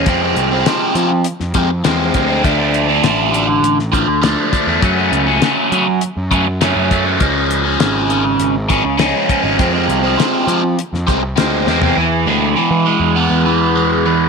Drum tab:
HH |x-x-x-x-x-x-x-x-|x-x-x-x-x-x-x-x-|x-x-x-x-x-x-x-x-|x-x-x-x-x-x-x-x-|
SD |----o----o--o---|----o----o--o---|----o-------o---|----o-------o---|
FT |----------------|----------------|----------------|----------------|
BD |o---------o---o-|o---------o---o-|o---------o---o-|o---------o---o-|

HH |x-x-x-x-x-x-x---|----------------|
SD |----o----o--o-o-|----------------|
FT |---------------o|----------------|
BD |o---------o-----|----------------|